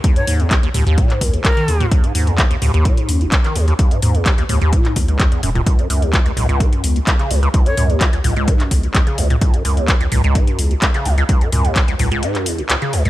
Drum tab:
HH |xxoxxxoxxxoxxxox|xxoxxxoxxxoxxxox|xxoxxxoxxxoxxxox|xxoxxxoxxxoxxxox|
CP |----x----x--x---|----x-------xx--|----x----x--x---|----x-------xx--|
T2 |--o---o--------o|------o---------|--o---o--------o|------o---------|
BD |o---o---o-o-o---|o---o---o---o---|o---o---o-o-o---|o---o---o---o---|

HH |xxoxxxoxxxoxxxox|xxoxxxoxxxoxxxox|xxoxxxoxxxoxxxox|
CP |----x----x--x---|----x-------xx--|----x----x--x---|
T2 |--o---o--------o|------o---------|--o---o--------o|
BD |o---o---o-o-o---|o---o---o---o---|o---o-----------|